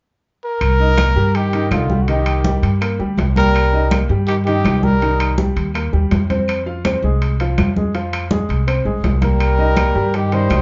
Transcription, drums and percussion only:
0.61 high conga, high timbale, claves
0.79 high conga
0.97 high conga, high timbale, low timbale, claves
1.17 high conga
1.35 high conga, high timbale
1.53 high conga, high timbale
1.71 high conga, high timbale, low timbale, claves
1.90 high conga
2.08 high conga, high timbale
2.26 high conga, high timbale, claves
2.44 high conga, low timbale
2.63 high conga, high timbale
2.81 high conga, high timbale, claves
3.00 high conga
3.18 high conga, high timbale, low timbale
3.36 high conga, high timbale
3.55 high timbale, claves
3.73 high conga
3.91 high conga, high timbale, low timbale, claves
4.10 high conga
4.28 high conga, high timbale
4.47 high conga, high timbale
4.65 high conga, high timbale, low timbale, claves
4.83 high conga
5.02 high conga, high timbale
5.20 high conga, high timbale, claves
5.38 high conga, low timbale
5.57 high conga, high timbale
5.74 high conga, high timbale, claves
5.93 high conga
6.11 high conga, high timbale, low timbale
6.30 high conga, high timbale
6.48 high conga, high timbale, claves
6.67 high conga
6.85 high conga, high timbale, low timbale, claves
7.03 high conga
7.22 high conga, high timbale
7.40 high conga, high timbale
7.58 high conga, high timbale, low timbale, claves
7.76 high conga
7.95 high conga, high timbale
8.13 high conga, high timbale, claves
8.31 high conga, low timbale
8.49 high conga, high timbale
8.67 high conga, high timbale, claves
8.86 high conga
9.04 high conga, high timbale, low timbale
9.22 high conga, high timbale
9.40 high conga, high timbale, claves
9.59 high conga
9.77 high conga, high timbale, low timbale, claves
9.95 high conga
10.14 high conga, high timbale
10.32 high conga, high timbale
10.50 high conga, high timbale, low timbale, claves

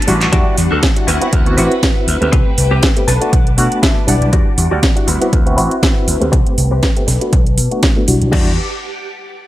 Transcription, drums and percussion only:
0.02 closed hi-hat
0.08 open hi-hat
0.21 clap, closed hi-hat
0.33 kick, closed hi-hat
0.58 open hi-hat
0.83 kick, snare, closed hi-hat
0.96 closed hi-hat
1.08 open hi-hat
1.22 closed hi-hat
1.33 kick, closed hi-hat
1.46 closed hi-hat
1.58 open hi-hat
1.72 closed hi-hat
1.83 kick, snare, closed hi-hat
2.08 open hi-hat
2.22 closed hi-hat
2.33 kick, closed hi-hat
2.58 open hi-hat
2.83 kick, snare, closed hi-hat
2.97 closed hi-hat
3.08 snare, open hi-hat
3.22 closed hi-hat
3.33 kick, closed hi-hat
3.47 closed hi-hat
3.58 open hi-hat
3.72 closed hi-hat
3.83 kick, snare, closed hi-hat
4.08 open hi-hat
4.22 closed hi-hat
4.33 kick, closed hi-hat
4.58 open hi-hat
4.83 kick, snare, closed hi-hat
4.97 closed hi-hat
5.08 open hi-hat
5.22 closed hi-hat
5.33 kick, closed hi-hat
5.47 closed hi-hat
5.58 open hi-hat
5.71 closed hi-hat
5.83 kick, snare, closed hi-hat
6.08 open hi-hat
6.22 closed hi-hat
6.33 kick, closed hi-hat
6.47 closed hi-hat
6.58 open hi-hat
6.83 kick, snare, closed hi-hat
6.97 closed hi-hat
7.08 snare, open hi-hat
7.21 closed hi-hat
7.33 kick, closed hi-hat
7.47 closed hi-hat
7.58 open hi-hat
7.71 closed hi-hat
7.83 kick, snare, closed hi-hat
8.08 open hi-hat
8.22 closed hi-hat
8.33 kick, crash

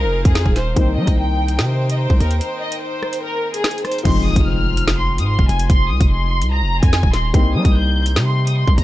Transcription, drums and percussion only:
0.25 kick, closed hi-hat
0.35 snare, closed hi-hat
0.46 kick
0.56 snare, closed hi-hat
0.76 kick, closed hi-hat
1.07 kick, closed hi-hat
1.48 closed hi-hat
1.59 snare
1.90 closed hi-hat
2.10 kick
2.20 closed hi-hat
2.31 closed hi-hat
2.41 closed hi-hat
2.72 closed hi-hat
3.03 cross-stick
3.13 closed hi-hat
3.54 closed hi-hat
3.64 snare, closed hi-hat
3.71 closed hi-hat
3.78 closed hi-hat
3.85 cross-stick, closed hi-hat
3.92 closed hi-hat
3.98 closed hi-hat
4.05 kick, closed hi-hat, crash
4.36 kick, closed hi-hat
4.77 closed hi-hat
4.88 snare
5.18 closed hi-hat
5.39 kick
5.49 closed hi-hat
5.59 closed hi-hat
5.70 kick, closed hi-hat
6.01 kick, closed hi-hat
6.42 closed hi-hat
6.83 kick, closed hi-hat
6.93 snare, closed hi-hat
7.03 kick
7.13 snare, closed hi-hat
7.34 kick, closed hi-hat
7.65 kick, closed hi-hat
8.06 closed hi-hat
8.16 snare
8.47 closed hi-hat
8.68 kick
8.78 closed hi-hat

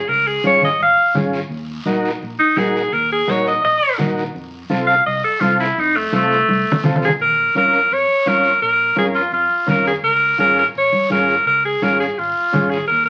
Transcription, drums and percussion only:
0.09 high conga, long guiro
0.44 high conga, short guiro
0.61 low conga, short guiro
0.79 high conga, long guiro
1.15 high conga, low conga, short guiro
1.33 short guiro
1.51 high conga, long guiro
1.86 high conga, short guiro
2.05 short guiro
2.22 high conga, long guiro
2.57 high conga, short guiro
2.76 short guiro
2.93 high conga, long guiro
3.28 high conga, short guiro
3.46 short guiro
3.63 high conga, long guiro
3.99 high conga, low conga, short guiro
4.18 short guiro
4.34 high conga, long guiro
4.70 high conga, short guiro
4.89 short guiro
5.05 high conga, long guiro
5.41 high conga, short guiro
5.60 short guiro
5.76 high conga, long guiro
6.13 high conga, short guiro
6.31 short guiro
6.49 high conga, long guiro
6.72 low conga
6.84 low conga, short guiro
6.96 low conga
7.02 short guiro
7.08 low conga
7.20 long guiro
7.55 high conga, short guiro
7.72 short guiro
7.91 long guiro
8.27 high conga, short guiro
8.44 short guiro
8.62 long guiro
8.97 high conga, short guiro
9.15 short guiro
9.32 long guiro
9.68 high conga, low conga, short guiro
9.86 short guiro
10.04 long guiro
10.39 high conga, short guiro
10.58 short guiro
10.75 long guiro
10.92 high conga
11.10 high conga, short guiro
11.29 short guiro
11.47 long guiro
11.82 high conga, short guiro
12.00 short guiro
12.19 long guiro
12.54 high conga, low conga, short guiro
12.72 short guiro
12.89 long guiro

